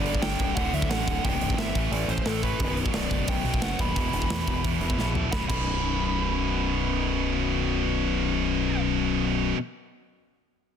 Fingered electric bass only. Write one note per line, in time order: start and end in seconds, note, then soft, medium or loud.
0.00 0.16 G1 loud
0.22 0.36 G1 medium
0.40 0.53 C1 medium
0.56 0.70 D1 medium
0.73 0.86 D2 medium
0.89 1.03 A1 medium
1.07 1.20 D1 medium
1.25 1.38 C1 medium
1.41 1.54 C1 medium
1.57 1.71 G1 medium
1.75 1.88 A1 medium
1.91 2.05 A1 medium
2.08 2.22 A1 medium
2.26 2.53 A1 medium
2.60 2.87 B0 loud
2.94 3.07 B0 medium
3.11 3.24 F#1 medium
3.28 3.42 B0 medium
3.44 3.58 B1 medium
3.61 3.75 F#1 medium
3.79 3.96 D#1 medium
3.96 4.10 E1 loud
4.13 4.26 E1 medium
4.30 4.44 E2 medium
4.47 4.61 E1 medium
4.65 4.78 E2 medium
4.81 4.94 E1 medium
4.97 5.25 A#1 medium
5.33 5.42 B0 medium
5.49 9.51 B0 medium